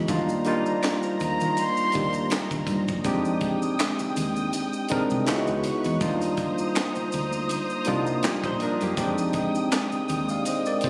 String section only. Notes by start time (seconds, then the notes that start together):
0.09 D#3 C5 A#5
3.04 G#3 G5 D#6
5.26 B4 C#5 C#6
6.01 C5 A#5 D#6
8.97 G#3 G5 D#6